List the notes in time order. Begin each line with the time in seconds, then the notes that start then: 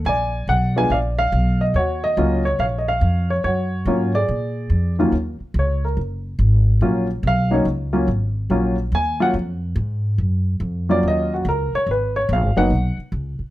0.05 A#1 D5 G#5
0.48 B1 F#5
0.76 G#3 B3 D4 F4 G#5
0.90 A#1 D5 F5
1.19 F5
1.32 B1
1.61 D#5
1.74 D#2 F#4 C#5
2.04 D#5
2.17 C#2 F#3 A#3 C#4 F4
2.45 C#5
2.59 A#1 C#5 F5
2.78 D#5
2.88 F5
3.01 F2
3.30 C#5
3.44 F#2 F#4 C#5
3.85 G#2 F#3 A#3 C#4 F4
4.15 G#4 D5
4.29 A#2
4.70 F2
4.99 D#2 F#3 A#3 C#4 F4
5.12 D#2
5.40 muted upright bass stroke
5.54 C#2
5.59 C#5
5.85 A#4
5.97 F#1
6.39 G#1
6.81 A#1 F#3 A#3 C#4 F4
7.23 B1
7.27 F5
7.51 F#3 A#3 C#4 D#4 C#5
7.65 C#2
7.93 F#3 A#3 C#4 F4
8.08 G#1
8.50 A#1 F#3 A#3 C#4 F4
8.92 D#2 G#5
9.20 F#3 A#3 C#4 F4 F#5
9.34 F2
9.76 G#2
10.18 F#2
10.60 F2
10.89 F#3 A#3 C#4 F4 D5
11.03 D#2
11.08 D#5
11.34 F#4
11.45 C#2 A#4
11.73 C#5, muted upright bass stroke
11.86 G#1
11.91 B4
12.16 C#5
12.29 A#1
12.33 F5
12.42 G#1
12.56 F#1 F#3 A#3 B3 D#4 F#5
12.70 B1
12.97 muted upright bass stroke
13.12 C#2
13.39 muted upright bass stroke